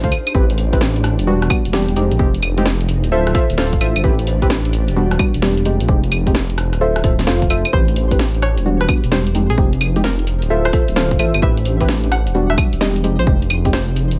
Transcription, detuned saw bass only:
0, 0, Header, 1, 2, 480
1, 0, Start_track
1, 0, Tempo, 461538
1, 361, Time_signature, 4, 2, 24, 8
1, 14759, End_track
2, 0, Start_track
2, 0, Title_t, "Detuned saw bass"
2, 0, Program_c, 0, 39
2, 37, Note_on_c, 0, 38, 80
2, 112, Note_off_c, 0, 38, 0
2, 360, Note_on_c, 0, 33, 97
2, 1238, Note_on_c, 0, 28, 91
2, 1254, Note_off_c, 0, 33, 0
2, 1548, Note_off_c, 0, 28, 0
2, 1718, Note_on_c, 0, 28, 84
2, 2028, Note_off_c, 0, 28, 0
2, 2042, Note_on_c, 0, 29, 80
2, 2183, Note_off_c, 0, 29, 0
2, 2199, Note_on_c, 0, 34, 90
2, 2273, Note_off_c, 0, 34, 0
2, 2281, Note_on_c, 0, 29, 99
2, 3158, Note_on_c, 0, 26, 90
2, 3174, Note_off_c, 0, 29, 0
2, 3468, Note_off_c, 0, 26, 0
2, 3638, Note_on_c, 0, 26, 85
2, 3948, Note_off_c, 0, 26, 0
2, 3960, Note_on_c, 0, 33, 80
2, 4102, Note_off_c, 0, 33, 0
2, 4118, Note_on_c, 0, 31, 90
2, 4193, Note_off_c, 0, 31, 0
2, 4200, Note_on_c, 0, 33, 100
2, 5078, Note_on_c, 0, 28, 90
2, 5093, Note_off_c, 0, 33, 0
2, 5388, Note_off_c, 0, 28, 0
2, 5558, Note_on_c, 0, 28, 83
2, 5868, Note_off_c, 0, 28, 0
2, 5881, Note_on_c, 0, 29, 82
2, 6023, Note_off_c, 0, 29, 0
2, 6038, Note_on_c, 0, 34, 91
2, 6113, Note_off_c, 0, 34, 0
2, 6120, Note_on_c, 0, 29, 97
2, 6998, Note_on_c, 0, 26, 90
2, 7014, Note_off_c, 0, 29, 0
2, 7308, Note_off_c, 0, 26, 0
2, 7321, Note_on_c, 0, 26, 106
2, 7555, Note_off_c, 0, 26, 0
2, 7562, Note_on_c, 0, 29, 88
2, 7703, Note_off_c, 0, 29, 0
2, 7718, Note_on_c, 0, 26, 84
2, 7793, Note_off_c, 0, 26, 0
2, 7801, Note_on_c, 0, 29, 86
2, 7942, Note_off_c, 0, 29, 0
2, 8041, Note_on_c, 0, 33, 100
2, 8919, Note_on_c, 0, 28, 94
2, 8934, Note_off_c, 0, 33, 0
2, 9228, Note_off_c, 0, 28, 0
2, 9399, Note_on_c, 0, 28, 84
2, 9708, Note_off_c, 0, 28, 0
2, 9721, Note_on_c, 0, 29, 82
2, 9862, Note_off_c, 0, 29, 0
2, 9878, Note_on_c, 0, 34, 91
2, 9953, Note_off_c, 0, 34, 0
2, 9961, Note_on_c, 0, 29, 99
2, 10837, Note_on_c, 0, 26, 92
2, 10853, Note_off_c, 0, 29, 0
2, 11147, Note_off_c, 0, 26, 0
2, 11317, Note_on_c, 0, 26, 86
2, 11627, Note_off_c, 0, 26, 0
2, 11641, Note_on_c, 0, 33, 81
2, 11782, Note_off_c, 0, 33, 0
2, 11797, Note_on_c, 0, 31, 93
2, 11872, Note_off_c, 0, 31, 0
2, 11880, Note_on_c, 0, 33, 98
2, 12758, Note_on_c, 0, 28, 95
2, 12773, Note_off_c, 0, 33, 0
2, 13068, Note_off_c, 0, 28, 0
2, 13238, Note_on_c, 0, 28, 85
2, 13548, Note_off_c, 0, 28, 0
2, 13561, Note_on_c, 0, 29, 80
2, 13703, Note_off_c, 0, 29, 0
2, 13718, Note_on_c, 0, 34, 92
2, 13793, Note_off_c, 0, 34, 0
2, 13801, Note_on_c, 0, 29, 101
2, 14678, Note_on_c, 0, 26, 91
2, 14693, Note_off_c, 0, 29, 0
2, 14759, Note_off_c, 0, 26, 0
2, 14759, End_track
0, 0, End_of_file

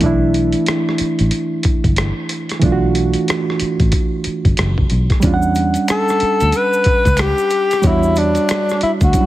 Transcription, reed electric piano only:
0, 0, Header, 1, 2, 480
1, 0, Start_track
1, 0, Tempo, 652174
1, 12, Time_signature, 4, 2, 24, 8
1, 6815, End_track
2, 0, Start_track
2, 0, Title_t, "Reed electric piano"
2, 0, Program_c, 0, 4
2, 0, Control_c, 0, 64, 127
2, 0, Note_on_c, 0, 52, 72
2, 9, Note_on_c, 0, 57, 66
2, 21, Control_c, 0, 64, 0
2, 28, Note_on_c, 0, 62, 66
2, 44, Note_on_c, 0, 64, 79
2, 170, Control_c, 0, 64, 127
2, 1892, Note_off_c, 0, 52, 0
2, 1901, Note_off_c, 0, 57, 0
2, 1909, Note_on_c, 0, 52, 75
2, 1910, Note_off_c, 0, 62, 0
2, 1919, Note_off_c, 0, 64, 0
2, 1924, Note_on_c, 0, 57, 64
2, 1940, Note_on_c, 0, 62, 65
2, 1956, Note_on_c, 0, 65, 61
2, 2003, Note_off_c, 0, 65, 0
2, 2003, Note_on_c, 0, 66, 78
2, 3811, Note_off_c, 0, 52, 0
2, 3818, Note_off_c, 0, 57, 0
2, 3826, Note_off_c, 0, 62, 0
2, 3827, Note_on_c, 0, 55, 66
2, 3848, Note_on_c, 0, 61, 65
2, 3858, Note_off_c, 0, 66, 0
2, 3861, Control_c, 0, 64, 0
2, 3861, Note_on_c, 0, 62, 64
2, 3878, Note_on_c, 0, 65, 58
2, 3924, Note_off_c, 0, 65, 0
2, 3928, Note_on_c, 0, 78, 79
2, 4002, Control_c, 0, 64, 127
2, 5730, Note_off_c, 0, 55, 0
2, 5741, Note_off_c, 0, 61, 0
2, 5747, Note_off_c, 0, 62, 0
2, 5753, Note_on_c, 0, 55, 63
2, 5769, Note_on_c, 0, 73, 55
2, 5781, Note_off_c, 0, 78, 0
2, 5786, Note_on_c, 0, 62, 53
2, 5805, Note_on_c, 0, 66, 65
2, 6703, Note_off_c, 0, 55, 0
2, 6711, Note_off_c, 0, 73, 0
2, 6720, Note_off_c, 0, 62, 0
2, 6722, Note_on_c, 0, 54, 36
2, 6730, Note_off_c, 0, 66, 0
2, 6731, Note_on_c, 0, 61, 42
2, 6742, Note_on_c, 0, 62, 44
2, 6747, Note_on_c, 0, 64, 48
2, 6773, Note_on_c, 0, 55, 47
2, 6786, Note_off_c, 0, 54, 0
2, 6815, Note_off_c, 0, 55, 0
2, 6815, Note_off_c, 0, 61, 0
2, 6815, Note_off_c, 0, 62, 0
2, 6815, Note_off_c, 0, 64, 0
2, 6815, End_track
0, 0, End_of_file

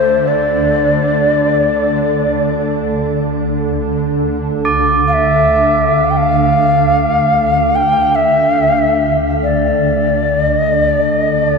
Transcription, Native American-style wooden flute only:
0, 0, Header, 1, 2, 480
1, 0, Start_track
1, 0, Key_signature, -1, "minor"
1, 0, Tempo, 500000
1, 11121, End_track
2, 0, Start_track
2, 0, Title_t, "Native American-style wooden flute"
2, 0, Program_c, 0, 77
2, 0, Note_on_c, 0, 72, 79
2, 266, Note_on_c, 0, 74, 71
2, 280, Note_off_c, 0, 72, 0
2, 2587, Note_off_c, 0, 74, 0
2, 4874, Note_on_c, 0, 77, 55
2, 4927, Note_on_c, 0, 76, 78
2, 4942, Note_off_c, 0, 77, 0
2, 5798, Note_on_c, 0, 77, 72
2, 5813, Note_off_c, 0, 76, 0
2, 5861, Note_on_c, 0, 79, 60
2, 5875, Note_off_c, 0, 77, 0
2, 5925, Note_on_c, 0, 77, 84
2, 5939, Note_off_c, 0, 79, 0
2, 7443, Note_on_c, 0, 79, 86
2, 7457, Note_off_c, 0, 77, 0
2, 7825, Note_on_c, 0, 76, 77
2, 7839, Note_off_c, 0, 79, 0
2, 8777, Note_off_c, 0, 76, 0
2, 9053, Note_on_c, 0, 74, 66
2, 10089, Note_off_c, 0, 74, 0
2, 10089, Note_on_c, 0, 75, 66
2, 10368, Note_off_c, 0, 75, 0
2, 10368, Note_on_c, 0, 74, 66
2, 10675, Note_off_c, 0, 74, 0
2, 10675, Note_on_c, 0, 75, 66
2, 10953, Note_off_c, 0, 75, 0
2, 10953, Note_on_c, 0, 74, 66
2, 11121, Note_off_c, 0, 74, 0
2, 11121, End_track
0, 0, End_of_file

